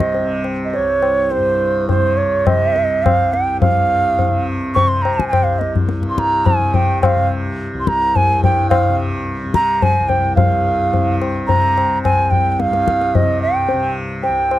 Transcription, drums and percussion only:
0.00 tabla ke medium
0.14 tabla tin medium
0.44 tabla na medium
0.74 tabla tin medium
1.03 tabla na medium
1.32 tabla tin medium
1.89 tabla tin medium
1.89 tabla ge medium
2.47 tabla na medium
2.47 tabla ge medium
2.76 tabla te medium
3.06 tabla na medium
3.06 tabla ge medium
3.34 tabla te medium
3.62 tabla tin loud
3.62 tabla ge medium
4.19 tabla tin medium
4.19 tabla ge medium
4.76 tabla tin medium
4.76 tabla ge medium
5.05 tabla na medium
5.19 tabla ke medium
5.33 tabla na medium
5.33 tabla ge medium
5.61 tabla te medium
5.76 tabla ge medium
5.89 tabla te medium
6.03 tabla te medium
6.18 tabla ke medium
6.46 tabla tin medium
6.46 tabla ge medium
6.74 tabla tin medium
6.74 tabla ge medium
7.03 tabla na medium
7.03 tabla ge medium
7.87 tabla ke medium
8.16 tabla tin medium
8.16 tabla ge medium
8.44 tabla tin medium
8.44 tabla ge medium
8.71 tabla na loud
8.71 tabla ge medium
9.54 tabla ke medium
9.82 tabla tin medium
9.82 tabla ge medium
10.09 tabla tin medium
10.09 tabla ge medium
10.37 tabla tin loud
10.37 tabla ge medium
10.94 tabla tin medium
10.94 tabla ge medium
11.22 tabla na medium
11.49 tabla tin medium
11.49 tabla ge medium
11.78 tabla na medium
12.05 tabla na medium
12.05 tabla ge medium
12.32 tabla ge soft
12.60 tabla te medium
12.73 tabla te medium
12.88 tabla ke medium
13.01 tabla te medium
13.15 tabla tin medium
13.15 tabla ge medium
13.69 tabla tin medium
14.24 tabla tin medium
14.51 tabla na medium

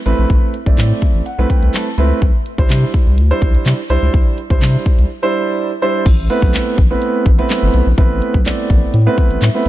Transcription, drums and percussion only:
0.06 closed hi-hat medium
0.30 kick loud
0.30 closed hi-hat medium
0.54 closed hi-hat medium
0.66 kick medium
0.78 snare medium
0.78 clap loud
0.78 closed hi-hat medium
1.02 kick medium
1.02 closed hi-hat medium
1.26 closed hi-hat medium
1.50 kick medium
1.50 closed hi-hat medium
1.63 closed hi-hat soft
1.74 snare medium
1.74 clap loud
1.74 closed hi-hat medium
1.98 closed hi-hat medium
2.22 kick loud
2.22 closed hi-hat medium
2.46 closed hi-hat medium
2.58 kick medium
2.70 snare medium
2.70 clap loud
2.70 closed hi-hat medium
2.94 kick medium
2.94 closed hi-hat medium
3.18 closed hi-hat loud
3.42 kick loud
3.42 closed hi-hat medium
3.55 closed hi-hat soft
3.66 snare medium
3.66 clap loud
3.66 closed hi-hat medium
3.90 closed hi-hat medium
4.14 kick loud
4.14 closed hi-hat medium
4.38 closed hi-hat medium
4.50 kick loud
4.62 snare medium
4.62 clap loud
4.62 closed hi-hat medium
4.86 kick loud
4.86 closed hi-hat medium
4.99 closed hi-hat medium
6.06 kick loud
6.06 closed hi-hat medium
6.06 crash loud
6.30 closed hi-hat medium
6.42 kick loud
6.54 snare medium
6.54 clap loud
6.54 closed hi-hat medium
6.78 kick loud
6.78 closed hi-hat medium
7.02 closed hi-hat medium
7.26 kick loud
7.26 closed hi-hat medium
7.39 closed hi-hat medium
7.50 snare medium
7.50 clap loud
7.50 closed hi-hat medium
7.74 closed hi-hat medium
7.98 kick loud
7.98 closed hi-hat medium
8.22 closed hi-hat medium
8.34 kick medium
8.46 snare medium
8.46 clap loud
8.46 closed hi-hat medium
8.70 kick loud
8.70 closed hi-hat medium
8.94 closed hi-hat medium
9.18 kick loud
9.18 closed hi-hat medium
9.31 closed hi-hat soft
9.42 snare medium
9.42 clap loud
9.42 closed hi-hat loud

